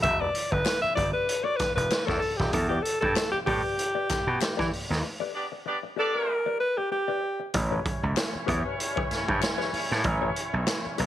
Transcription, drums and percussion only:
0.03 kick, closed hi-hat
0.35 closed hi-hat
0.52 kick
0.66 snare, clap, closed hi-hat
0.97 kick, closed hi-hat
1.29 closed hi-hat
1.59 kick, snare, clap, closed hi-hat
1.78 closed hi-hat
1.90 snare, clap, closed hi-hat
2.08 kick, snare
2.22 open hi-hat
2.40 kick, snare
2.53 kick, closed hi-hat
2.85 closed hi-hat
3.02 kick
3.16 snare, clap, closed hi-hat
3.47 kick, open hi-hat
3.79 closed hi-hat
4.09 kick, snare, clap, closed hi-hat
4.41 snare, clap, closed hi-hat
4.59 kick, snare
4.73 open hi-hat
4.92 snare
7.54 kick, closed hi-hat
7.86 kick, closed hi-hat
8.17 snare, clap, closed hi-hat
8.48 kick, closed hi-hat
8.80 closed hi-hat
8.97 kick
9.11 snare, closed hi-hat
9.28 kick
9.42 snare, clap, closed hi-hat
9.61 snare
9.74 open hi-hat
9.92 snare
10.04 kick, closed hi-hat
10.36 closed hi-hat
10.67 snare, clap, closed hi-hat
10.98 closed hi-hat

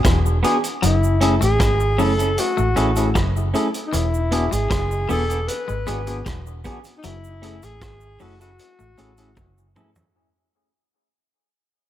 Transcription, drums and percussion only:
0.05 kick, cross-stick, closed hi-hat, cabasa
0.26 cabasa
0.44 closed hi-hat, cabasa
0.64 closed hi-hat, cabasa
0.83 closed hi-hat, cabasa
1.04 cabasa
1.21 closed hi-hat, cabasa
1.42 closed hi-hat, cabasa
1.60 kick, cross-stick, closed hi-hat, cabasa
1.80 cabasa
1.99 open hi-hat, cabasa
2.19 closed hi-hat, cabasa
2.38 closed hi-hat, cabasa
2.58 cabasa
2.77 closed hi-hat, cabasa
2.96 closed hi-hat, cabasa
3.15 kick, cross-stick, closed hi-hat, cabasa
3.37 cabasa
3.55 closed hi-hat, cabasa
3.74 closed hi-hat, cabasa
3.93 closed hi-hat, cabasa
4.14 cabasa
4.32 closed hi-hat, cabasa
4.52 closed hi-hat, cabasa
4.71 kick, cross-stick, closed hi-hat, cabasa
4.91 cabasa
5.10 open hi-hat, cabasa
5.30 closed hi-hat, cabasa
5.48 closed hi-hat, cabasa
5.69 cabasa
5.87 closed hi-hat, cabasa
6.07 closed hi-hat, cabasa
6.26 kick, cross-stick, closed hi-hat, cabasa
6.47 cabasa
6.64 kick, closed hi-hat, cabasa
6.84 closed hi-hat, cabasa
7.03 closed hi-hat, cabasa
7.24 cabasa
7.43 closed hi-hat, cabasa
7.63 closed hi-hat, cabasa
7.82 kick, cross-stick, closed hi-hat, cabasa
8.00 cabasa
8.20 open hi-hat, cabasa
8.41 closed hi-hat, cabasa
8.59 closed hi-hat, cabasa
8.79 cabasa
8.98 closed hi-hat, cabasa
9.17 closed hi-hat, cabasa
9.37 kick, high tom, cabasa
9.58 cabasa
9.76 mid tom, cabasa
9.95 floor tom, cabasa

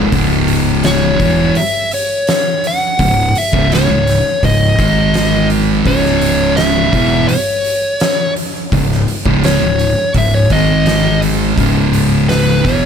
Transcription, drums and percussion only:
0.12 kick, open hi-hat
0.48 open hi-hat
0.83 snare, open hi-hat
1.20 kick, open hi-hat
1.55 open hi-hat
1.91 open hi-hat
2.27 snare, open hi-hat
2.64 open hi-hat
2.99 kick, open hi-hat
3.35 open hi-hat
3.53 kick
3.72 snare, open hi-hat
4.07 snare, open hi-hat
4.43 kick, open hi-hat
4.79 kick, open hi-hat
5.14 snare, open hi-hat
5.50 open hi-hat
5.86 kick, open hi-hat
6.05 snare
6.21 open hi-hat
6.57 snare, open hi-hat
6.93 kick, open hi-hat
7.29 open hi-hat
7.64 open hi-hat
8.00 snare, open hi-hat
8.36 open hi-hat
8.72 kick, open hi-hat
8.91 snare
9.08 open hi-hat
9.26 kick
9.44 snare, open hi-hat
9.79 open hi-hat
10.14 kick, open hi-hat
10.50 kick, open hi-hat
10.86 snare, open hi-hat
11.22 open hi-hat
11.58 kick, open hi-hat
11.93 open hi-hat
12.29 snare, open hi-hat
12.65 kick, snare, open hi-hat

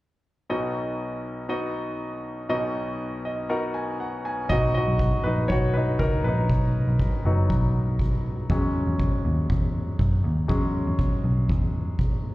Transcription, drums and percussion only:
4.50 kick
4.99 kick
5.50 kick
5.99 kick
6.50 kick
6.99 kick
7.50 kick
7.99 kick
8.50 kick
9.00 kick
9.50 kick
9.99 kick
10.49 kick
10.99 kick
11.49 kick
11.99 kick

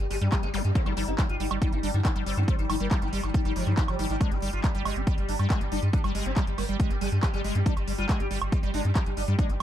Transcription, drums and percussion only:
0.11 open hi-hat
0.21 closed hi-hat
0.32 kick, clap, closed hi-hat, high woodblock
0.43 closed hi-hat
0.54 open hi-hat
0.65 closed hi-hat
0.75 kick, closed hi-hat
0.86 closed hi-hat, high woodblock
0.97 open hi-hat
1.08 closed hi-hat
1.19 kick, clap, closed hi-hat
1.29 closed hi-hat
1.40 open hi-hat
1.51 closed hi-hat, high woodblock
1.62 kick, closed hi-hat
1.72 closed hi-hat
1.83 open hi-hat
2.05 kick, clap, closed hi-hat, high woodblock
2.16 closed hi-hat
2.26 open hi-hat
2.37 closed hi-hat
2.48 kick, closed hi-hat
2.59 closed hi-hat
2.70 open hi-hat, high woodblock
2.80 closed hi-hat
2.91 kick, clap, closed hi-hat
3.02 closed hi-hat
3.13 open hi-hat
3.24 closed hi-hat, high woodblock
3.34 kick, closed hi-hat
3.45 closed hi-hat
3.56 open hi-hat
3.67 closed hi-hat
3.77 kick, clap, closed hi-hat
3.88 closed hi-hat, high woodblock
3.99 open hi-hat
4.10 closed hi-hat
4.21 kick, closed hi-hat, high woodblock
4.31 closed hi-hat
4.42 open hi-hat
4.53 closed hi-hat
4.64 kick, clap, closed hi-hat
4.75 closed hi-hat
4.85 open hi-hat, high woodblock
4.96 closed hi-hat
5.07 kick, closed hi-hat
5.18 closed hi-hat
5.29 open hi-hat
5.39 closed hi-hat, high woodblock
5.50 kick, clap, closed hi-hat
5.61 closed hi-hat
5.72 open hi-hat
5.83 closed hi-hat
5.93 kick, closed hi-hat
6.04 closed hi-hat, high woodblock
6.15 open hi-hat
6.26 closed hi-hat
6.36 kick, clap, closed hi-hat
6.47 closed hi-hat
6.58 open hi-hat, high woodblock
6.69 closed hi-hat
6.80 kick, closed hi-hat
6.90 closed hi-hat
7.01 open hi-hat
7.12 closed hi-hat
7.23 kick, clap, closed hi-hat, high woodblock
7.34 closed hi-hat
7.44 open hi-hat
7.55 closed hi-hat
7.66 kick, closed hi-hat
7.77 closed hi-hat, high woodblock
7.88 open hi-hat
7.98 closed hi-hat
8.09 kick, clap, closed hi-hat
8.20 closed hi-hat
8.31 open hi-hat
8.42 closed hi-hat, high woodblock
8.52 kick, closed hi-hat
8.63 closed hi-hat
8.74 open hi-hat
8.85 closed hi-hat
8.96 kick, clap, closed hi-hat, high woodblock
9.06 closed hi-hat
9.17 open hi-hat
9.28 closed hi-hat
9.39 kick, closed hi-hat
9.49 closed hi-hat

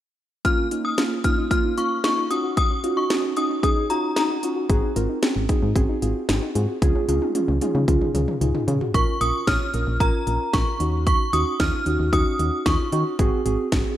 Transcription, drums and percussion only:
0.45 kick, closed hi-hat
0.71 closed hi-hat
0.98 snare, closed hi-hat
1.24 kick, closed hi-hat
1.51 kick, closed hi-hat
1.78 closed hi-hat
2.04 snare, closed hi-hat
2.31 closed hi-hat
2.57 kick, closed hi-hat
2.84 closed hi-hat
3.10 snare, closed hi-hat
3.37 closed hi-hat
3.63 kick, closed hi-hat
3.90 closed hi-hat
4.16 snare, closed hi-hat
4.43 closed hi-hat
4.70 kick, closed hi-hat
4.96 closed hi-hat
5.23 snare, closed hi-hat
5.49 kick, closed hi-hat
5.76 kick, closed hi-hat
6.02 closed hi-hat
6.29 snare, closed hi-hat
6.55 closed hi-hat
6.82 kick, closed hi-hat, high tom
6.95 high tom
7.09 closed hi-hat, high tom
7.22 high tom
7.35 closed hi-hat, mid tom
7.48 mid tom
7.61 closed hi-hat, mid tom
7.75 mid tom
7.88 kick, closed hi-hat, mid tom
8.01 mid tom
8.15 closed hi-hat, mid tom
8.28 mid tom
8.41 closed hi-hat, floor tom
8.55 floor tom
8.68 closed hi-hat, floor tom
8.81 floor tom
8.94 kick, closed hi-hat
9.21 closed hi-hat
9.47 kick, snare, closed hi-hat
9.74 closed hi-hat
10.00 kick, closed hi-hat
10.27 closed hi-hat
10.54 kick, snare, closed hi-hat
10.80 closed hi-hat
11.07 kick, closed hi-hat
11.33 closed hi-hat
11.60 kick, snare, closed hi-hat
11.86 closed hi-hat
12.13 kick, closed hi-hat
12.39 closed hi-hat
12.66 kick, snare, closed hi-hat
12.92 closed hi-hat
13.19 kick, closed hi-hat
13.46 closed hi-hat
13.72 kick, snare, closed hi-hat

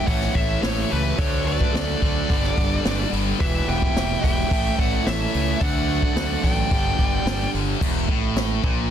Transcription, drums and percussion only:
0.07 kick, open hi-hat
0.21 snare
0.35 kick, open hi-hat
0.63 snare, open hi-hat
0.91 open hi-hat
1.19 kick, open hi-hat
1.47 open hi-hat
1.60 kick
1.75 snare, open hi-hat
2.02 kick, open hi-hat
2.30 kick, open hi-hat
2.44 snare
2.58 kick, open hi-hat
2.85 snare, open hi-hat
3.13 open hi-hat
3.40 kick, open hi-hat
3.68 open hi-hat
3.82 kick
3.96 snare, open hi-hat
4.24 kick, open hi-hat
4.51 kick, open hi-hat
4.66 snare
4.79 kick, open hi-hat
5.07 snare, open hi-hat
5.34 open hi-hat
5.61 kick, open hi-hat
5.89 open hi-hat
6.02 kick
6.16 snare, open hi-hat
6.44 kick, open hi-hat
6.71 kick, open hi-hat
6.99 kick, open hi-hat
7.27 snare, open hi-hat
7.55 open hi-hat
7.81 kick, crash
8.09 kick
8.36 snare, crash
8.64 kick

